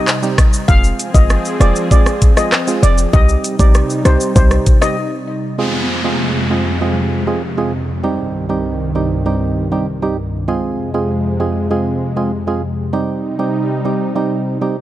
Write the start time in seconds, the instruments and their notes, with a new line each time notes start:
Already playing: analog synth pad C3 G3 D#4
0.08 clap, shaker
0.22 synth stab G3 C4 D#4 G4, shaker
0.38 kick, cross-stick, closed hi-hat, shaker
0.53 shaker
0.68 808-style bass F1, analog synth pad F3 C4 G#4, synth stab G#3 C4 F4 G#4, steel pan F5, kick, shaker
0.84 shaker
0.99 closed hi-hat, shaker
1.14 808-style bass G1, synth stab G#3 C4 F4 G#4, steel pan D#5, kick, shaker
1.30 cross-stick, shaker
1.45 shaker
1.60 808-style bass F1, synth stab G#3 C4 F4 G#4, steel pan D5, cross-stick, closed hi-hat, shaker
1.76 shaker
1.91 synth stab G#3 C4 F4 G#4, steel pan D5, kick, shaker
2.06 cross-stick, shaker
2.22 kick, closed hi-hat, shaker
2.37 synth stab G#3 C4 F4 G#4, steel pan D#5, cross-stick, shaker
2.52 cross-stick, clap, shaker
2.67 synth stab G#3 C4 F4 G#4, shaker
2.83 808-style bass F1, steel pan D5, closed hi-hat, shaker
2.98 shaker
3.13 808-style bass C2, analog synth pad C3 G3 D#4, synth stab G3 C4 D#4 G4, steel pan D#5, kick, shaker
3.29 shaker
3.44 closed hi-hat, shaker
3.59 808-style bass A#1, synth stab G3 C4 D#4 G4, steel pan D5, kick, shaker
3.74 cross-stick, shaker
3.90 shaker
4.05 808-style bass C2, synth stab G3 C4 D#4 G4, steel pan C5, cross-stick, closed hi-hat, shaker
4.20 shaker
4.36 808-style bass C2, synth stab G3 C4 D#4 G4, steel pan C5, kick, shaker
4.51 cross-stick, shaker
4.66 kick, closed hi-hat, shaker
4.82 synth stab G3 C4 D#4 G4, steel pan D#5, cross-stick, shaker
5.58 analog synth pad F2 C3 G#3, synth stab G#3 C4 F4 G#4, downlifter
6.04 synth stab G#3 C4 F4 G#4
6.50 synth stab G#3 C4 F4 G#4
6.81 synth stab G#3 C4 F4 G#4
7.27 synth stab G#3 C4 F4 G#4
7.57 synth stab G#3 C4 F4 G#4
8.03 analog synth pad C2 G2 D#3, synth stab G3 C4 D#4 G4
8.49 synth stab G3 C4 D#4 G4
8.95 synth stab G3 C4 D#4 G4
9.26 synth stab G3 C4 D#4 G4
9.72 synth stab G3 C4 D#4 G4
10.02 synth stab G3 C4 D#4 G4
10.48 analog synth pad F2 C3 G#3, synth stab G#3 C4 F4 G#4
10.94 synth stab G#3 C4 F4 G#4
11.40 synth stab G#3 C4 F4 G#4
11.71 synth stab G#3 C4 F4 G#4
12.16 synth stab G#3 C4 F4 G#4
12.47 synth stab G#3 C4 F4 G#4
12.93 analog synth pad C3 G3 D#4, synth stab G3 C4 D#4 G4
13.39 synth stab G3 C4 D#4 G4
13.85 synth stab G3 C4 D#4 G4
14.15 synth stab G3 C4 D#4 G4
14.61 synth stab G3 C4 D#4 G4